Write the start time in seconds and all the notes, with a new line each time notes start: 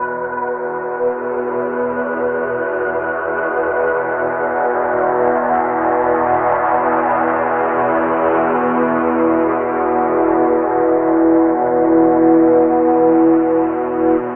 Already playing: E2 B2 B4
4.22 E4
4.89 B4
8.69 F#5